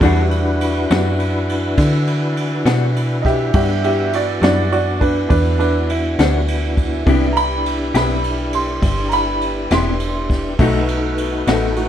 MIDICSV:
0, 0, Header, 1, 7, 480
1, 0, Start_track
1, 0, Key_signature, 1, "minor"
1, 0, Tempo, 587084
1, 16, Time_signature, 12, 3, 24, 8
1, 9717, End_track
2, 0, Start_track
2, 0, Title_t, "Upright piano"
2, 0, Program_c, 0, 0
2, 1, Note_on_c, 0, 55, 51
2, 4, Note_on_c, 0, 62, 46
2, 8, Note_on_c, 0, 66, 57
2, 697, Note_off_c, 0, 55, 0
2, 698, Note_off_c, 0, 62, 0
2, 700, Note_off_c, 0, 66, 0
2, 2630, Note_on_c, 0, 75, 52
2, 2659, Note_off_c, 0, 75, 0
2, 2661, Note_on_c, 0, 67, 70
2, 2666, Note_on_c, 0, 76, 74
2, 2883, Note_off_c, 0, 67, 0
2, 2895, Note_on_c, 0, 55, 49
2, 2896, Note_off_c, 0, 76, 0
2, 2899, Note_on_c, 0, 62, 45
2, 2902, Note_on_c, 0, 66, 53
2, 2902, Note_on_c, 0, 67, 71
2, 2909, Note_on_c, 0, 76, 78
2, 3124, Note_off_c, 0, 67, 0
2, 3138, Note_off_c, 0, 76, 0
2, 3146, Note_on_c, 0, 67, 69
2, 3154, Note_on_c, 0, 76, 77
2, 3366, Note_off_c, 0, 67, 0
2, 3374, Note_off_c, 0, 66, 0
2, 3380, Note_off_c, 0, 76, 0
2, 3386, Note_on_c, 0, 66, 59
2, 3396, Note_on_c, 0, 74, 72
2, 3585, Note_off_c, 0, 55, 0
2, 3587, Note_off_c, 0, 62, 0
2, 3606, Note_off_c, 0, 66, 0
2, 3614, Note_on_c, 0, 55, 41
2, 3618, Note_off_c, 0, 74, 0
2, 3619, Note_on_c, 0, 62, 40
2, 3622, Note_on_c, 0, 66, 71
2, 3630, Note_on_c, 0, 74, 85
2, 3833, Note_off_c, 0, 55, 0
2, 3835, Note_off_c, 0, 62, 0
2, 3848, Note_off_c, 0, 66, 0
2, 3851, Note_off_c, 0, 74, 0
2, 3861, Note_on_c, 0, 66, 71
2, 3863, Note_on_c, 0, 74, 80
2, 4084, Note_off_c, 0, 66, 0
2, 4092, Note_on_c, 0, 62, 68
2, 4095, Note_off_c, 0, 74, 0
2, 4098, Note_on_c, 0, 71, 72
2, 4313, Note_off_c, 0, 62, 0
2, 4320, Note_off_c, 0, 71, 0
2, 4326, Note_on_c, 0, 62, 72
2, 4332, Note_on_c, 0, 71, 82
2, 4556, Note_off_c, 0, 62, 0
2, 4564, Note_off_c, 0, 71, 0
2, 4570, Note_on_c, 0, 62, 67
2, 4576, Note_on_c, 0, 71, 76
2, 4798, Note_off_c, 0, 62, 0
2, 4811, Note_off_c, 0, 71, 0
2, 4828, Note_on_c, 0, 64, 81
2, 5756, Note_off_c, 0, 64, 0
2, 5772, Note_on_c, 0, 59, 46
2, 5778, Note_on_c, 0, 62, 43
2, 5785, Note_on_c, 0, 64, 54
2, 5991, Note_on_c, 0, 82, 73
2, 6020, Note_off_c, 0, 82, 0
2, 6025, Note_on_c, 0, 83, 100
2, 6489, Note_off_c, 0, 83, 0
2, 6512, Note_on_c, 0, 83, 83
2, 6972, Note_off_c, 0, 83, 0
2, 6988, Note_on_c, 0, 84, 79
2, 7433, Note_on_c, 0, 82, 68
2, 7450, Note_off_c, 0, 84, 0
2, 7461, Note_off_c, 0, 82, 0
2, 7467, Note_on_c, 0, 83, 89
2, 7929, Note_off_c, 0, 83, 0
2, 7960, Note_on_c, 0, 84, 85
2, 8623, Note_off_c, 0, 59, 0
2, 8626, Note_off_c, 0, 62, 0
2, 8629, Note_off_c, 0, 64, 0
2, 8649, Note_off_c, 0, 84, 0
2, 8654, Note_on_c, 0, 57, 48
2, 8663, Note_on_c, 0, 63, 44
2, 8670, Note_on_c, 0, 66, 53
2, 9344, Note_off_c, 0, 57, 0
2, 9348, Note_off_c, 0, 63, 0
2, 9352, Note_off_c, 0, 66, 0
2, 9616, Note_on_c, 0, 57, 42
2, 9622, Note_on_c, 0, 63, 40
2, 9624, Note_on_c, 0, 66, 47
2, 9717, Note_off_c, 0, 57, 0
2, 9717, Note_off_c, 0, 63, 0
2, 9717, Note_off_c, 0, 66, 0
2, 9717, End_track
3, 0, Start_track
3, 0, Title_t, "Tonewheel organ"
3, 0, Program_c, 1, 16
3, 15, Note_on_c, 1, 71, 65
3, 21, Note_on_c, 1, 62, 68
3, 22, Note_on_c, 1, 64, 69
3, 23, Note_on_c, 1, 66, 72
3, 2870, Note_off_c, 1, 71, 0
3, 2873, Note_off_c, 1, 62, 0
3, 2874, Note_off_c, 1, 64, 0
3, 2874, Note_off_c, 1, 66, 0
3, 2902, Note_on_c, 1, 59, 68
3, 2903, Note_on_c, 1, 62, 70
3, 2904, Note_on_c, 1, 66, 67
3, 2905, Note_on_c, 1, 64, 67
3, 5753, Note_off_c, 1, 59, 0
3, 5754, Note_off_c, 1, 62, 0
3, 5754, Note_off_c, 1, 66, 0
3, 5755, Note_off_c, 1, 64, 0
3, 5766, Note_on_c, 1, 62, 73
3, 5770, Note_on_c, 1, 64, 68
3, 5770, Note_on_c, 1, 67, 68
3, 8624, Note_off_c, 1, 62, 0
3, 8626, Note_off_c, 1, 64, 0
3, 8626, Note_off_c, 1, 67, 0
3, 8664, Note_on_c, 1, 63, 69
3, 8667, Note_on_c, 1, 71, 71
3, 8669, Note_on_c, 1, 66, 68
3, 8669, Note_on_c, 1, 69, 66
3, 9717, Note_off_c, 1, 63, 0
3, 9717, Note_off_c, 1, 66, 0
3, 9717, Note_off_c, 1, 69, 0
3, 9717, Note_off_c, 1, 71, 0
3, 9717, End_track
4, 0, Start_track
4, 0, Title_t, "Clean electric guitar"
4, 0, Program_c, 2, 27
4, 22, Note_on_c, 2, 52, 90
4, 27, Note_on_c, 2, 55, 95
4, 31, Note_on_c, 2, 62, 100
4, 41, Note_on_c, 2, 66, 103
4, 163, Note_off_c, 2, 52, 0
4, 166, Note_off_c, 2, 55, 0
4, 167, Note_off_c, 2, 62, 0
4, 172, Note_off_c, 2, 66, 0
4, 745, Note_on_c, 2, 66, 81
4, 749, Note_on_c, 2, 62, 81
4, 753, Note_on_c, 2, 55, 77
4, 756, Note_on_c, 2, 52, 58
4, 885, Note_off_c, 2, 66, 0
4, 887, Note_off_c, 2, 62, 0
4, 889, Note_off_c, 2, 55, 0
4, 890, Note_off_c, 2, 52, 0
4, 2176, Note_on_c, 2, 66, 84
4, 2180, Note_on_c, 2, 62, 74
4, 2189, Note_on_c, 2, 55, 69
4, 2192, Note_on_c, 2, 52, 65
4, 2321, Note_off_c, 2, 66, 0
4, 2324, Note_off_c, 2, 62, 0
4, 2328, Note_off_c, 2, 55, 0
4, 2329, Note_off_c, 2, 52, 0
4, 3625, Note_on_c, 2, 66, 70
4, 3629, Note_on_c, 2, 62, 65
4, 3633, Note_on_c, 2, 55, 63
4, 3641, Note_on_c, 2, 52, 55
4, 3766, Note_off_c, 2, 66, 0
4, 3769, Note_off_c, 2, 62, 0
4, 3770, Note_off_c, 2, 55, 0
4, 3775, Note_off_c, 2, 52, 0
4, 5063, Note_on_c, 2, 66, 72
4, 5067, Note_on_c, 2, 62, 69
4, 5074, Note_on_c, 2, 55, 65
4, 5076, Note_on_c, 2, 52, 56
4, 5206, Note_off_c, 2, 66, 0
4, 5208, Note_off_c, 2, 62, 0
4, 5211, Note_off_c, 2, 55, 0
4, 5213, Note_off_c, 2, 52, 0
4, 5778, Note_on_c, 2, 48, 86
4, 5784, Note_on_c, 2, 59, 91
4, 5787, Note_on_c, 2, 64, 93
4, 5795, Note_on_c, 2, 67, 96
4, 5923, Note_off_c, 2, 48, 0
4, 5926, Note_off_c, 2, 59, 0
4, 5928, Note_off_c, 2, 64, 0
4, 5932, Note_off_c, 2, 67, 0
4, 6496, Note_on_c, 2, 67, 72
4, 6507, Note_on_c, 2, 64, 67
4, 6512, Note_on_c, 2, 59, 65
4, 6514, Note_on_c, 2, 48, 58
4, 6642, Note_off_c, 2, 67, 0
4, 6648, Note_off_c, 2, 64, 0
4, 6651, Note_off_c, 2, 48, 0
4, 6651, Note_off_c, 2, 59, 0
4, 7943, Note_on_c, 2, 67, 70
4, 7950, Note_on_c, 2, 64, 73
4, 7955, Note_on_c, 2, 48, 64
4, 7957, Note_on_c, 2, 59, 67
4, 8086, Note_off_c, 2, 67, 0
4, 8089, Note_off_c, 2, 64, 0
4, 8092, Note_off_c, 2, 48, 0
4, 8093, Note_off_c, 2, 59, 0
4, 8668, Note_on_c, 2, 47, 90
4, 8671, Note_on_c, 2, 57, 88
4, 8677, Note_on_c, 2, 63, 97
4, 8684, Note_on_c, 2, 66, 94
4, 8808, Note_off_c, 2, 47, 0
4, 8810, Note_off_c, 2, 57, 0
4, 8812, Note_off_c, 2, 63, 0
4, 8816, Note_off_c, 2, 66, 0
4, 9387, Note_on_c, 2, 63, 79
4, 9387, Note_on_c, 2, 66, 85
4, 9397, Note_on_c, 2, 47, 62
4, 9397, Note_on_c, 2, 57, 76
4, 9527, Note_off_c, 2, 63, 0
4, 9527, Note_off_c, 2, 66, 0
4, 9532, Note_off_c, 2, 47, 0
4, 9532, Note_off_c, 2, 57, 0
4, 9717, End_track
5, 0, Start_track
5, 0, Title_t, "Saxophone section"
5, 0, Program_c, 3, 65
5, 0, Note_on_c, 3, 62, 73
5, 3, Note_on_c, 3, 52, 78
5, 2885, Note_on_c, 3, 64, 82
5, 5739, Note_off_c, 3, 62, 0
5, 5742, Note_off_c, 3, 52, 0
5, 5764, Note_on_c, 3, 55, 66
5, 5764, Note_on_c, 3, 59, 72
5, 8620, Note_off_c, 3, 64, 0
5, 8623, Note_off_c, 3, 55, 0
5, 8659, Note_on_c, 3, 57, 78
5, 8663, Note_on_c, 3, 63, 78
5, 9717, Note_off_c, 3, 57, 0
5, 9717, Note_off_c, 3, 59, 0
5, 9717, Note_off_c, 3, 63, 0
5, 9717, End_track
6, 0, Start_track
6, 0, Title_t, "FM bass"
6, 0, Program_c, 4, 39
6, 7, Note_on_c, 4, 40, 87
6, 711, Note_off_c, 4, 40, 0
6, 741, Note_on_c, 4, 42, 95
6, 1438, Note_off_c, 4, 42, 0
6, 1455, Note_on_c, 4, 50, 95
6, 2156, Note_off_c, 4, 50, 0
6, 2171, Note_on_c, 4, 47, 90
6, 2874, Note_off_c, 4, 47, 0
6, 2896, Note_on_c, 4, 43, 87
6, 3597, Note_off_c, 4, 43, 0
6, 3612, Note_on_c, 4, 42, 89
6, 4314, Note_off_c, 4, 42, 0
6, 4338, Note_on_c, 4, 40, 89
6, 5038, Note_off_c, 4, 40, 0
6, 5060, Note_on_c, 4, 38, 93
6, 5759, Note_off_c, 4, 38, 0
6, 5777, Note_on_c, 4, 36, 89
6, 6477, Note_off_c, 4, 36, 0
6, 6495, Note_on_c, 4, 35, 97
6, 7196, Note_off_c, 4, 35, 0
6, 7212, Note_on_c, 4, 31, 90
6, 7915, Note_off_c, 4, 31, 0
6, 7938, Note_on_c, 4, 28, 97
6, 8637, Note_off_c, 4, 28, 0
6, 8660, Note_on_c, 4, 35, 92
6, 9358, Note_off_c, 4, 35, 0
6, 9381, Note_on_c, 4, 33, 91
6, 9717, Note_off_c, 4, 33, 0
6, 9717, End_track
7, 0, Start_track
7, 0, Title_t, "Drums"
7, 9, Note_on_c, 9, 36, 111
7, 11, Note_on_c, 9, 51, 88
7, 91, Note_off_c, 9, 36, 0
7, 93, Note_off_c, 9, 51, 0
7, 253, Note_on_c, 9, 51, 58
7, 335, Note_off_c, 9, 51, 0
7, 497, Note_on_c, 9, 51, 67
7, 579, Note_off_c, 9, 51, 0
7, 741, Note_on_c, 9, 51, 83
7, 753, Note_on_c, 9, 38, 110
7, 822, Note_off_c, 9, 51, 0
7, 835, Note_off_c, 9, 38, 0
7, 977, Note_on_c, 9, 51, 67
7, 1058, Note_off_c, 9, 51, 0
7, 1221, Note_on_c, 9, 51, 65
7, 1303, Note_off_c, 9, 51, 0
7, 1452, Note_on_c, 9, 51, 85
7, 1453, Note_on_c, 9, 36, 108
7, 1464, Note_on_c, 9, 38, 33
7, 1533, Note_off_c, 9, 51, 0
7, 1535, Note_off_c, 9, 36, 0
7, 1546, Note_off_c, 9, 38, 0
7, 1694, Note_on_c, 9, 51, 61
7, 1776, Note_off_c, 9, 51, 0
7, 1937, Note_on_c, 9, 51, 60
7, 2018, Note_off_c, 9, 51, 0
7, 2175, Note_on_c, 9, 51, 78
7, 2187, Note_on_c, 9, 38, 104
7, 2257, Note_off_c, 9, 51, 0
7, 2269, Note_off_c, 9, 38, 0
7, 2422, Note_on_c, 9, 51, 68
7, 2504, Note_off_c, 9, 51, 0
7, 2656, Note_on_c, 9, 36, 86
7, 2658, Note_on_c, 9, 51, 66
7, 2670, Note_on_c, 9, 38, 35
7, 2738, Note_off_c, 9, 36, 0
7, 2739, Note_off_c, 9, 51, 0
7, 2752, Note_off_c, 9, 38, 0
7, 2891, Note_on_c, 9, 51, 87
7, 2895, Note_on_c, 9, 36, 117
7, 2973, Note_off_c, 9, 51, 0
7, 2976, Note_off_c, 9, 36, 0
7, 3139, Note_on_c, 9, 51, 63
7, 3221, Note_off_c, 9, 51, 0
7, 3377, Note_on_c, 9, 51, 64
7, 3459, Note_off_c, 9, 51, 0
7, 3618, Note_on_c, 9, 51, 80
7, 3631, Note_on_c, 9, 38, 118
7, 3700, Note_off_c, 9, 51, 0
7, 3712, Note_off_c, 9, 38, 0
7, 3861, Note_on_c, 9, 51, 59
7, 3942, Note_off_c, 9, 51, 0
7, 4098, Note_on_c, 9, 36, 83
7, 4100, Note_on_c, 9, 51, 64
7, 4180, Note_off_c, 9, 36, 0
7, 4182, Note_off_c, 9, 51, 0
7, 4337, Note_on_c, 9, 36, 114
7, 4338, Note_on_c, 9, 51, 78
7, 4418, Note_off_c, 9, 36, 0
7, 4419, Note_off_c, 9, 51, 0
7, 4579, Note_on_c, 9, 51, 56
7, 4661, Note_off_c, 9, 51, 0
7, 4820, Note_on_c, 9, 51, 60
7, 4902, Note_off_c, 9, 51, 0
7, 5059, Note_on_c, 9, 51, 74
7, 5071, Note_on_c, 9, 38, 108
7, 5141, Note_off_c, 9, 51, 0
7, 5153, Note_off_c, 9, 38, 0
7, 5299, Note_on_c, 9, 51, 71
7, 5381, Note_off_c, 9, 51, 0
7, 5538, Note_on_c, 9, 36, 79
7, 5539, Note_on_c, 9, 51, 65
7, 5620, Note_off_c, 9, 36, 0
7, 5620, Note_off_c, 9, 51, 0
7, 5778, Note_on_c, 9, 36, 118
7, 5780, Note_on_c, 9, 51, 85
7, 5860, Note_off_c, 9, 36, 0
7, 5862, Note_off_c, 9, 51, 0
7, 6021, Note_on_c, 9, 51, 71
7, 6102, Note_off_c, 9, 51, 0
7, 6262, Note_on_c, 9, 51, 68
7, 6344, Note_off_c, 9, 51, 0
7, 6497, Note_on_c, 9, 51, 87
7, 6509, Note_on_c, 9, 38, 107
7, 6578, Note_off_c, 9, 51, 0
7, 6591, Note_off_c, 9, 38, 0
7, 6737, Note_on_c, 9, 51, 66
7, 6819, Note_off_c, 9, 51, 0
7, 6972, Note_on_c, 9, 51, 65
7, 7054, Note_off_c, 9, 51, 0
7, 7215, Note_on_c, 9, 51, 86
7, 7216, Note_on_c, 9, 36, 112
7, 7227, Note_on_c, 9, 38, 33
7, 7297, Note_off_c, 9, 36, 0
7, 7297, Note_off_c, 9, 51, 0
7, 7309, Note_off_c, 9, 38, 0
7, 7451, Note_on_c, 9, 51, 62
7, 7532, Note_off_c, 9, 51, 0
7, 7695, Note_on_c, 9, 51, 57
7, 7777, Note_off_c, 9, 51, 0
7, 7935, Note_on_c, 9, 51, 75
7, 7948, Note_on_c, 9, 38, 103
7, 8017, Note_off_c, 9, 51, 0
7, 8029, Note_off_c, 9, 38, 0
7, 8173, Note_on_c, 9, 51, 62
7, 8255, Note_off_c, 9, 51, 0
7, 8420, Note_on_c, 9, 36, 84
7, 8424, Note_on_c, 9, 51, 64
7, 8437, Note_on_c, 9, 38, 35
7, 8502, Note_off_c, 9, 36, 0
7, 8506, Note_off_c, 9, 51, 0
7, 8518, Note_off_c, 9, 38, 0
7, 8660, Note_on_c, 9, 36, 118
7, 8661, Note_on_c, 9, 51, 86
7, 8741, Note_off_c, 9, 36, 0
7, 8743, Note_off_c, 9, 51, 0
7, 8899, Note_on_c, 9, 51, 64
7, 8980, Note_off_c, 9, 51, 0
7, 9138, Note_on_c, 9, 51, 65
7, 9220, Note_off_c, 9, 51, 0
7, 9379, Note_on_c, 9, 51, 89
7, 9392, Note_on_c, 9, 38, 110
7, 9461, Note_off_c, 9, 51, 0
7, 9473, Note_off_c, 9, 38, 0
7, 9617, Note_on_c, 9, 51, 66
7, 9698, Note_off_c, 9, 51, 0
7, 9717, End_track
0, 0, End_of_file